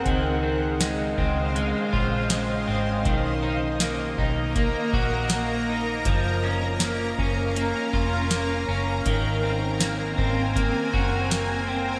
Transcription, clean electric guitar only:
X:1
M:4/4
L:1/8
Q:1/4=80
K:Db
V:1 name="Clean electric guitar"
E, C A, C A, F A, C | E, E B, E B, G B, E | F, D B, D B, F B, D | E, C B, C B, G B, C |]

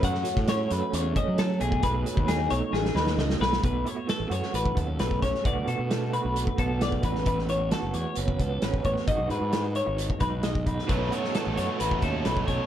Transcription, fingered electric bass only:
X:1
M:4/4
L:1/16
Q:1/4=132
K:Bmix
V:1 name="Fingered electric bass" clef=bass
F,,2 z A,,3 F,, z E,,2 z F,3 B,,,2 | B,,,2 z D,,3 B,,, z A,,,2 D,,2 C,,2 B,,,2 | B,,,2 z3 A,,, F,, z A,,,2 D,,2 B,,,2 B,,, z | B,,, =D,, B,, B,,4 B,,,2 z B,,,4 A,,,2- |
A,,,4- A,,, F,,, E,, z F,,,2 C,,2 A,,,2 A,,, z | G,,, B,,, G,, G,,4 G,,,2 z B,,,6 | B,,,2 z3 A,,, F,, z A,,,2 D,,2 B,,,2 B,,, z |]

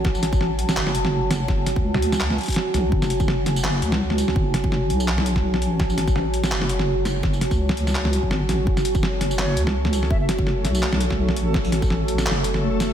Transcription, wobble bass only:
X:1
M:4/4
L:1/16
Q:"Swing 16ths" 1/4=167
K:F#m
V:1 name="Wobble bass" clef=bass
A,,,8 F,,,8 | F,,,3 C,,6- C,, z4 B,,,2 | F,,,8- F,,,2 C,,6 | F,,,6 B,,,8 A,,,2- |
A,,,8 F,,,8 | F,,,3 C,,8 G,,,3 A,,,2 | F,,,8- F,,,2 C,,6 | F,,,6 B,,,8 A,,,2- |
A,,,8 F,,,8 |]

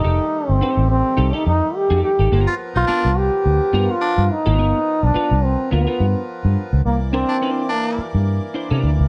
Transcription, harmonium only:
X:1
M:4/4
L:1/8
Q:"Swing 16ths" 1/4=106
K:Gdor
V:1 name="Harmonium"
[_E,G,A,]8 | [F,=B,^A]8- | [F,=B,^A]8 | [E,B,d]8 |]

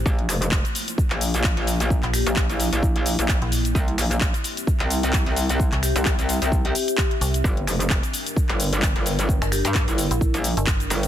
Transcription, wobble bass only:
X:1
M:4/4
L:1/16
Q:"Swing 16ths" 1/4=130
K:Cmix
V:1 name="Wobble bass" clef=bass
B,,,2 F,,,3 z4 B,,,4 B,,,3- | B,,, z2 B,,,2 B,,,2 B,,,4 B,,,2 z3 | C,,2 B,,,3 z4 C,,4 C,,3- | C,, z2 C,,2 C,,2 C,,3 z6 |
G,,,2 F,,,3 z4 G,,,4 G,,,3- | G,,, z2 G,,2 G,,,2 z2 B,,,2 z3 G,,,2 |]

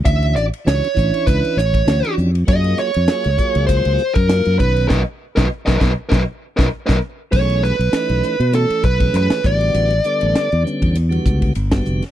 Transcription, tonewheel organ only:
X:1
M:4/4
L:1/16
Q:"Swing 16ths" 1/4=99
K:B
V:1 name="Tonewheel organ"
[E,C=DF]3 z [E,CDF] z [E,CDE]4 z2 [E,CDF]3 z | [F,A,^EG]3 z [F,A,EG] z [F,A,EG]4 z2 [F,A,EA]2 [D,B,CB]2 | [A,B,D] z2 [A,B,D] z [A,B,D] [A,B,D] z [A,B,D] z2 [A,B,D] z [A,B,D] z2 | [K:Alyd] [E,A,CG]3 z [E,A,CD]3 z [E,A,CA]2 z [E,A,CG]3 [=D,=G,B,F]2- |
[=D,=G,B,F] z [D,G,B,A]3 z [D,G,B,C]2 z [D,G,B,F]3 z [D,G,B,F]2 z |]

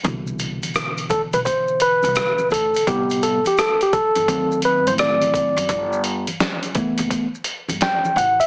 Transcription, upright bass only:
X:1
M:4/4
L:1/16
Q:"Swing 16ths" 1/4=85
K:Clyd
V:1 name="Upright bass" clef=bass
C,,3 z4 B,,, z3 C,, z2 D,, z | A,,,3 z4 G,,, D,,3 A,,4 F,, | G,,,3 z4 F,,, z3 G,,, z2 A,,, z |]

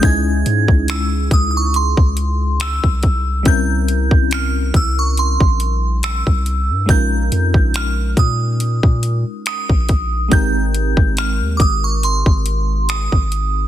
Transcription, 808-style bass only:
X:1
M:4/4
L:1/16
Q:"Swing 16ths" 1/4=70
K:Ab
V:1 name="808-style bass" clef=bass
D,,2 A,, D,,3 D,,3 D,,4 C,,3 | C,,3 C,,3 C,,3 B,,,4 C,,2 G,, | B,,,2 F,, B,,,3 B,,3 B,,2 z2 B,,,3 | A,,,3 A,,,2 E,, A,,,3 A,,,4 A,,,3 |]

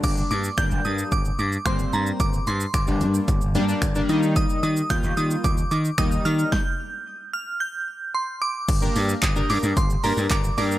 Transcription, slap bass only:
X:1
M:4/4
L:1/16
Q:1/4=111
K:Gm
V:1 name="Slap bass" clef=bass
G,,,2 G,,2 G,,, G,,, G,,2 G,,,2 G,,2 G,,,2 G,,2 | G,,,2 G,,2 G,,, G,,, G,,2 G,,,2 G,,2 G,,,2 E,2- | E,2 E,2 E,, E,, E,2 E,,2 E,2 E,,2 E,2 | z16 |
G,,,2 G,,2 G,,,2 G,, G,, G,,,2 G,, G,, G,,,2 G,,2 |]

